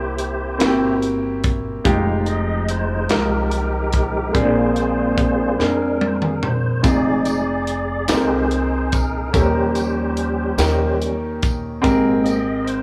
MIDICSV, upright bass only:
0, 0, Header, 1, 2, 480
1, 0, Start_track
1, 0, Tempo, 832178
1, 1068, Time_signature, 6, 3, 24, 8
1, 7397, End_track
2, 0, Start_track
2, 0, Title_t, "Upright bass"
2, 0, Program_c, 0, 32
2, 0, Note_on_c, 0, 36, 94
2, 325, Note_off_c, 0, 36, 0
2, 346, Note_on_c, 0, 31, 82
2, 1043, Note_off_c, 0, 31, 0
2, 1066, Note_on_c, 0, 29, 98
2, 1763, Note_off_c, 0, 29, 0
2, 1786, Note_on_c, 0, 36, 82
2, 2483, Note_off_c, 0, 36, 0
2, 2507, Note_on_c, 0, 34, 112
2, 3203, Note_off_c, 0, 34, 0
2, 3227, Note_on_c, 0, 41, 67
2, 3924, Note_off_c, 0, 41, 0
2, 3945, Note_on_c, 0, 29, 98
2, 4643, Note_off_c, 0, 29, 0
2, 4661, Note_on_c, 0, 36, 89
2, 5361, Note_off_c, 0, 36, 0
2, 5388, Note_on_c, 0, 39, 111
2, 6085, Note_off_c, 0, 39, 0
2, 6103, Note_on_c, 0, 39, 87
2, 6803, Note_off_c, 0, 39, 0
2, 6829, Note_on_c, 0, 32, 103
2, 7397, Note_off_c, 0, 32, 0
2, 7397, End_track
0, 0, End_of_file